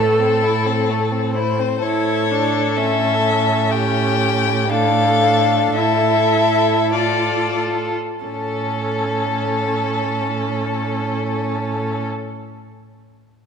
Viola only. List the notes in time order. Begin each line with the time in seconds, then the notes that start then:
Already playing: A4
1.83 E4
2.31 D4
2.78 C#4
3.24 C#4
4.72 D4
5.77 E4
6.93 F4
8.24 C#4